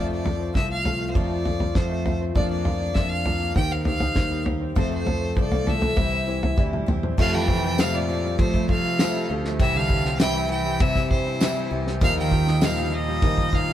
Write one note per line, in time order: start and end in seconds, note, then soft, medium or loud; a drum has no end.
0.00 0.24 F2 medium
0.00 0.51 F2 medium
0.00 0.25 C3 medium
0.00 0.23 F3 medium
0.00 0.25 F3 medium
0.00 0.25 A3 medium
0.00 0.24 C4 medium
0.00 0.23 F4 medium
0.09 0.69 A3 medium
0.09 0.53 D5 medium
0.24 0.52 F3 medium
0.24 0.53 F3 soft
0.24 0.54 A3 soft
0.24 0.55 C4 soft
0.24 0.54 F4 soft
0.24 floor tom medium
0.39 1.00 C4 medium
0.54 1.11 C2 medium
0.54 0.82 F3 medium
0.54 0.85 F3 soft
0.54 0.85 A3 medium
0.54 0.84 C4 medium
0.54 0.83 F4 medium
0.54 0.69 E5 medium
0.54 kick loud
0.54 snare medium
0.69 1.30 F4 medium
0.69 1.06 F5 medium
0.84 1.12 F3 medium
0.84 1.14 F3 soft
0.84 1.15 A3 soft
0.84 1.15 C4 soft
0.84 1.15 F4 soft
0.84 floor tom medium
0.99 1.60 A3 medium
1.10 1.44 F3 medium
1.10 1.18 C5 medium
1.15 1.45 F2 medium
1.15 1.72 F2 medium
1.15 1.45 C3 medium
1.15 1.46 F3 medium
1.15 1.46 A3 medium
1.15 1.45 C4 medium
1.15 1.44 F4 medium
1.15 1.78 D5 medium
1.15 kick loud
1.15 floor tom medium
1.30 1.90 C4 medium
1.45 1.74 F3 medium
1.45 1.74 F3 soft
1.45 1.75 A3 soft
1.45 1.75 C4 soft
1.45 1.75 F4 soft
1.45 floor tom medium
1.60 2.21 F4 medium
1.60 floor tom medium
1.75 2.32 F2 medium
1.75 2.34 F3 medium
1.75 2.05 F3 medium
1.75 2.06 A3 medium
1.75 2.06 C4 medium
1.75 2.05 F4 medium
1.75 2.21 C5 medium
1.75 kick loud
1.75 snare medium
1.90 2.35 A3 medium
2.06 2.34 F3 soft
2.06 2.35 A3 soft
2.06 2.36 C4 soft
2.06 2.36 F4 medium
2.06 floor tom medium
2.21 2.36 C4 medium
2.35 3.52 F1 medium
2.35 2.92 F2 medium
2.35 3.52 F2 medium
2.35 2.65 F3 medium
2.35 2.64 F3 medium
2.35 2.85 A#3 medium
2.35 2.66 A#3 medium
2.35 2.85 D4 medium
2.35 2.65 D4 medium
2.35 2.85 F4 medium
2.35 2.64 F4 medium
2.35 2.49 D5 medium
2.35 2.85 D5 loud
2.35 kick loud
2.35 floor tom medium
2.51 3.11 A#3 medium
2.51 2.96 D5 medium
2.65 2.94 F3 medium
2.65 2.96 A#3 soft
2.65 2.96 D4 soft
2.65 2.95 F4 medium
2.65 floor tom medium
2.80 3.41 D4 medium
2.95 3.52 F2 medium
2.95 3.24 F3 medium
2.95 3.26 F3 medium
2.95 3.45 A#3 medium
2.95 3.26 A#3 medium
2.95 3.45 D4 medium
2.95 3.26 D4 medium
2.95 3.45 F4 medium
2.95 3.24 F4 medium
2.95 3.45 D5 medium
2.95 3.12 E5 medium
2.95 kick medium
2.95 snare medium
3.11 3.56 F4 medium
3.11 3.55 F5 medium
3.26 3.56 F3 medium
3.26 3.55 A#3 soft
3.26 3.56 D4 soft
3.26 3.56 F4 soft
3.26 floor tom medium
3.40 3.56 A#3 medium
3.55 4.12 D#2 medium
3.55 4.73 D#2 medium
3.55 3.85 D#3 medium
3.55 3.86 D#3 medium
3.55 4.73 D#3 medium
3.55 3.86 A#3 medium
3.55 3.81 A#3 medium
3.55 3.86 C4 medium
3.55 3.81 D#4 medium
3.55 3.81 G4 medium
3.55 3.85 G4 medium
3.55 3.81 C5 medium
3.55 3.74 G5 loud
3.55 kick loud
3.55 floor tom medium
3.71 4.31 C4 medium
3.71 3.86 F5 medium
3.85 4.14 D#3 medium
3.85 4.11 A#3 medium
3.85 4.16 A#3 soft
3.85 4.17 C4 soft
3.85 4.11 D#4 medium
3.85 4.16 G4 medium
3.85 4.11 G4 medium
3.85 4.11 C5 medium
3.85 4.43 F5 medium
3.85 floor tom medium
4.00 4.62 D#4 medium
4.00 floor tom medium
4.16 4.73 D#2 medium
4.16 4.76 D#3 medium
4.16 4.47 D#3 medium
4.16 4.66 A#3 medium
4.16 4.47 A#3 medium
4.16 4.46 C4 medium
4.16 4.66 D#4 medium
4.16 4.66 G4 medium
4.16 4.44 G4 medium
4.16 4.66 C5 medium
4.16 kick loud
4.16 snare medium
4.31 4.76 G3 medium
4.45 4.76 A#3 soft
4.45 4.76 C4 soft
4.45 4.76 G4 medium
4.45 floor tom medium
4.61 4.76 C4 medium
4.75 5.93 F1 medium
4.75 5.06 F2 medium
4.75 5.33 F2 medium
4.75 5.93 F2 medium
4.75 5.06 C3 medium
4.75 5.06 F3 medium
4.75 5.26 A3 medium
4.75 5.06 A3 medium
4.75 5.26 C4 medium
4.75 5.05 C4 medium
4.75 5.26 F4 medium
4.75 5.04 A4 medium
4.75 5.26 C5 loud
4.75 4.92 C5 medium
4.75 kick loud
4.75 floor tom medium
4.91 5.52 A3 medium
4.91 5.35 C5 medium
5.05 5.35 F3 medium
5.05 5.34 F3 soft
5.05 5.35 A3 soft
5.05 5.36 C4 soft
5.05 5.36 A4 soft
5.05 floor tom medium
5.21 5.82 C4 medium
5.35 5.93 C2 medium
5.35 5.66 F3 medium
5.35 5.67 A3 medium
5.35 5.86 A3 medium
5.35 5.86 C4 medium
5.35 5.66 C4 medium
5.35 5.87 F4 medium
5.35 5.65 A4 medium
5.35 5.87 C5 medium
5.35 kick loud
5.40 5.71 D5 medium
5.52 5.97 F4 medium
5.52 floor tom medium
5.66 5.98 F3 medium
5.66 5.96 F3 soft
5.66 5.96 A3 soft
5.66 5.95 C4 soft
5.66 5.97 A4 medium
5.66 6.59 E5 loud
5.66 floor tom medium
5.82 5.97 A3 medium
5.82 floor tom medium
5.96 7.14 C2 medium
5.96 6.54 C2 medium
5.96 6.27 C3 medium
5.96 7.14 C3 medium
5.96 6.26 E3 medium
5.96 6.22 G3 medium
5.96 6.27 G3 medium
5.96 6.22 C4 medium
5.96 6.27 C4 medium
5.96 6.22 E4 medium
5.96 6.26 E4 medium
5.96 6.25 G4 medium
5.96 6.22 C5 medium
5.96 kick loud
5.96 floor tom medium
6.12 6.73 C4 medium
6.26 6.56 E3 medium
6.26 6.52 G3 medium
6.26 6.52 C4 medium
6.26 6.56 C4 soft
6.26 6.56 E4 soft
6.26 6.52 E4 medium
6.26 6.57 G4 soft
6.26 6.52 C5 medium
6.43 7.03 E4 medium
6.43 floor tom medium
6.56 6.85 D2 medium
6.56 7.18 E3 medium
6.56 6.87 G3 medium
6.56 7.07 G3 medium
6.56 6.87 C4 medium
6.56 7.07 C4 medium
6.56 6.87 E4 medium
6.56 7.07 E4 medium
6.56 6.85 G4 medium
6.56 7.08 C5 medium
6.56 6.72 D5 medium
6.56 kick loud
6.73 7.18 G3 medium
6.73 6.87 E5 medium
6.73 mid tom medium
6.86 7.15 E2 medium
6.86 7.18 C4 medium
6.86 7.18 E4 medium
6.86 7.17 G4 medium
6.86 7.16 G5 medium
6.86 floor tom medium
6.86 mid tom medium
7.03 7.18 C4 medium
7.03 mid tom medium
7.18 9.56 F1 medium
7.18 7.48 F2 medium
7.18 9.56 F2 medium
7.18 8.35 F2 medium
7.18 7.48 C3 medium
7.18 7.36 C3 medium
7.18 7.68 G3 medium
7.18 7.49 G3 medium
7.18 7.62 A3 medium
7.18 7.48 A3 medium
7.18 7.68 C4 medium
7.18 7.47 C4 medium
7.18 7.49 F4 medium
7.18 7.68 A4 medium
7.18 7.68 C5 medium
7.18 7.68 F5 medium
7.18 7.36 F5 loud
7.18 kick loud
7.18 crash loud
7.34 7.81 E3 medium
7.34 7.94 G3 medium
7.34 7.81 G5 loud
7.48 8.09 C3 medium
7.48 7.77 G3 soft
7.48 7.78 A3 soft
7.48 7.78 C4 soft
7.48 kick medium
7.63 8.24 A3 medium
7.77 8.08 F2 medium
7.77 8.09 C3 medium
7.77 7.96 C3 medium
7.77 8.37 F3 medium
7.77 8.27 G3 medium
7.77 8.09 G3 medium
7.77 8.09 A3 medium
7.77 8.28 C4 medium
7.77 8.08 C4 medium
7.77 8.28 F4 medium
7.77 8.07 F4 medium
7.77 8.28 A4 medium
7.77 8.28 C5 medium
7.77 7.97 F5 loud
7.77 snare loud
7.77 ride bell medium
7.77 tambourine medium
7.94 8.37 A#2 medium
7.94 8.54 F4 medium
7.94 8.40 D5 medium
8.08 8.37 G3 soft
8.08 8.38 A3 soft
8.08 8.39 C4 soft
8.08 8.39 F4 medium
8.24 8.84 G3 medium
8.38 8.67 A2 medium
8.38 8.68 F3 medium
8.38 9.26 F3 medium
8.38 8.69 G3 medium
8.38 8.88 G3 medium
8.38 8.69 A3 medium
8.38 8.88 C4 medium
8.38 8.68 C4 medium
8.38 8.88 F4 medium
8.38 8.67 F4 medium
8.38 8.88 A4 medium
8.38 8.89 C5 medium
8.38 8.68 C5 medium
8.38 kick loud
8.38 ride bell medium
8.54 9.15 A3 medium
8.54 kick medium
8.68 9.25 C3 medium
8.68 8.99 F3 medium
8.68 8.98 G3 soft
8.68 8.99 A3 soft
8.68 8.99 C4 soft
8.68 8.99 F4 medium
8.68 9.26 F5 medium
8.68 kick medium
8.85 9.45 F4 medium
8.99 9.29 F2 medium
8.99 9.29 C3 medium
8.99 9.30 F3 medium
8.99 9.49 G3 medium
8.99 9.30 G3 medium
8.99 9.29 A3 medium
8.99 9.49 C4 medium
8.99 9.29 C4 medium
8.99 9.49 F4 medium
8.99 9.28 F4 medium
8.99 9.49 A4 medium
8.99 9.49 C5 medium
8.99 snare loud
8.99 ride bell medium
8.99 tambourine medium
9.16 9.61 G3 medium
9.29 9.58 D2 loud
9.29 9.61 F3 medium
9.29 9.58 G3 soft
9.29 9.60 A3 soft
9.29 9.59 C4 medium
9.29 9.60 F4 medium
9.45 9.61 A3 medium
9.45 snare soft
9.59 11.98 C2 medium
9.59 10.77 C2 medium
9.59 9.90 C3 medium
9.59 11.98 C3 medium
9.59 9.76 C3 medium
9.59 10.09 E3 medium
9.59 9.90 E3 medium
9.59 9.90 G3 medium
9.59 10.09 G3 medium
9.59 10.09 C4 medium
9.59 9.90 C4 medium
9.59 9.90 E4 medium
9.59 9.89 G4 medium
9.59 10.09 C5 medium
9.59 9.78 E5 loud
9.59 10.10 G5 medium
9.59 kick loud
9.59 ride bell medium
9.74 10.20 D3 medium
9.74 10.36 G3 medium
9.74 10.20 F5 loud
9.90 10.19 E3 medium
9.90 10.19 C4 soft
9.90 10.20 G4 soft
9.90 kick medium
10.05 10.66 C4 medium
10.05 snare soft
10.19 10.50 C3 medium
10.19 10.48 E3 medium
10.19 10.79 E3 medium
10.19 10.50 G3 medium
10.19 10.70 G3 medium
10.19 10.70 C4 medium
10.19 10.51 C4 medium
10.19 10.70 E4 medium
10.19 10.50 E4 medium
10.19 10.49 G4 medium
10.19 10.70 C5 medium
10.19 10.70 E5 medium
10.19 10.48 G5 loud
10.19 snare loud
10.19 ride bell medium
10.19 tambourine medium
10.35 10.96 E4 medium
10.50 10.81 E3 medium
10.50 10.80 C4 soft
10.50 10.81 E4 soft
10.50 10.80 G4 medium
10.50 10.82 G5 medium
10.65 11.26 G3 medium
10.80 11.09 C3 medium
10.80 11.67 C3 medium
10.80 11.10 E3 medium
10.80 11.11 G3 medium
10.80 11.31 G3 medium
10.80 11.11 C4 medium
10.80 11.31 C4 medium
10.80 11.31 E4 medium
10.80 11.11 E4 medium
10.80 11.09 G4 medium
10.80 11.31 C5 medium
10.80 11.10 E5 loud
10.80 11.31 E5 medium
10.80 kick loud
10.80 ride bell medium
10.96 11.57 C4 medium
10.96 kick medium
10.96 snare soft
11.10 11.67 G2 medium
11.10 11.40 E3 medium
11.10 11.40 C4 soft
11.10 11.40 E4 soft
11.10 11.41 G4 medium
11.10 11.67 C5 medium
11.10 kick medium
11.26 11.87 E4 medium
11.40 11.71 C3 medium
11.40 11.70 E3 medium
11.40 11.71 G3 medium
11.40 11.91 G3 medium
11.40 11.72 C4 medium
11.40 11.91 C4 medium
11.40 11.71 E4 medium
11.40 11.91 E4 medium
11.40 11.69 G4 medium
11.40 11.91 C5 medium
11.40 11.91 E5 medium
11.40 snare loud
11.40 ride bell medium
11.40 tambourine medium
11.56 12.02 G3 medium
11.71 12.00 C2 loud
11.71 12.02 E3 medium
11.71 12.01 C4 soft
11.71 12.02 E4 medium
11.71 12.01 G4 medium
11.87 12.02 C4 medium
11.87 snare soft
12.01 13.19 D#2 loud
12.01 13.73 D#2 medium
12.01 12.16 A#2 medium
12.01 12.32 D#3 medium
12.01 13.73 D#3 medium
12.01 12.31 F3 medium
12.01 12.32 G3 medium
12.01 12.52 G3 medium
12.01 12.32 A#3 medium
12.01 12.32 D#4 medium
12.01 12.52 D#4 medium
12.01 12.52 F4 medium
12.01 12.31 F4 medium
12.01 12.52 A#4 medium
12.01 12.52 D#5 medium
12.01 12.17 F5 loud
12.01 kick loud
12.01 ride bell medium
12.17 12.65 D#3 loud
12.17 12.78 G3 medium
12.17 12.66 G5 loud
12.32 12.61 F3 medium
12.32 12.61 A#3 soft
12.32 12.62 D#4 soft
12.32 12.62 F4 medium
12.32 kick medium
12.47 13.08 D#4 medium
12.47 snare soft
12.61 12.87 A#2 medium
12.61 12.92 D#3 medium
12.61 13.22 F3 medium
12.61 13.11 G3 medium
12.61 12.93 G3 medium
12.61 12.93 A#3 medium
12.61 13.12 D#4 medium
12.61 12.92 D#4 medium
12.61 13.12 F4 medium
12.61 12.90 F4 medium
12.61 13.12 A#4 medium
12.61 13.12 D#5 medium
12.61 12.86 F5 loud
12.61 snare loud
12.61 ride bell medium
12.61 tambourine medium
12.78 13.38 F4 medium
12.85 12.94 D3 medium
12.85 12.96 F5 medium
12.92 13.53 A#2 medium
12.92 13.22 A#3 soft
12.92 13.23 D#4 medium
12.92 13.22 F4 medium
12.92 13.56 D#5 loud
13.08 13.68 G3 medium
13.22 13.73 D#3 medium
13.22 13.52 F3 medium
13.22 13.53 G3 medium
13.22 13.72 G3 medium
13.22 13.53 A#3 medium
13.22 13.72 D#4 medium
13.22 13.52 D#4 medium
13.22 13.72 F4 medium
13.22 13.51 F4 medium
13.22 13.73 A#4 medium
13.22 13.73 D#5 medium
13.22 kick loud
13.22 ride bell medium
13.38 13.73 D#4 medium
13.38 kick medium
13.52 13.73 A#2 medium
13.52 13.73 F3 medium
13.52 13.73 A#3 soft
13.52 13.73 D#4 medium
13.52 13.73 F4 medium
13.52 13.73 F5 loud
13.52 kick medium
13.68 13.73 F4 medium